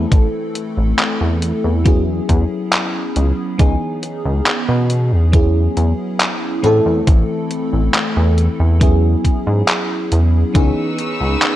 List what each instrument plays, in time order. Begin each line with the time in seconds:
Already playing: fm electric piano E3 A3 C4 E4 A4
0.12 analog synth bass A1, kick, closed hi-hat
0.55 closed hi-hat
0.77 analog synth bass A1
0.99 clap, closed hi-hat
1.21 analog synth bass E2
1.42 closed hi-hat
1.64 analog synth bass E2
1.84 fm electric piano F#3 B3 C#4 E4 G#4, kick, closed hi-hat
2.29 analog synth bass E2, kick, closed hi-hat
2.73 clap, closed hi-hat
3.16 analog synth bass C#2, closed hi-hat
3.58 analog synth bass C#2, fm electric piano E3 B3 C#4 D#4 G#4, kick, closed hi-hat
4.03 closed hi-hat
4.25 analog synth bass C#2
4.46 clap, closed hi-hat
4.69 analog synth bass B2
4.90 closed hi-hat
5.12 analog synth bass E2
5.32 fm electric piano F#3 B3 C#4 E4 G#4, kick, closed hi-hat
5.77 analog synth bass E2, closed hi-hat
6.20 clap, closed hi-hat
6.62 analog synth bass A2, fm electric piano E3 A3 C4 E4 A4, closed hi-hat
6.86 analog synth bass E2
7.07 analog synth bass A1, kick, closed hi-hat
7.51 closed hi-hat
7.73 analog synth bass A1
7.94 clap, closed hi-hat
8.16 analog synth bass E2
8.38 closed hi-hat
8.60 analog synth bass E2
8.80 fm electric piano F#3 B3 C#4 E4 G#4, kick, closed hi-hat
9.25 kick, closed hi-hat
9.47 analog synth bass G#2
9.68 clap, closed hi-hat
10.12 analog synth bass E2, closed hi-hat
10.54 analog synth bass C#2, fm electric piano E3 B3 C#4 D#4 G#4, string section D#4 B4 C#6 E6, kick, closed hi-hat
10.99 closed hi-hat
11.21 analog synth bass C#2
11.42 clap, closed hi-hat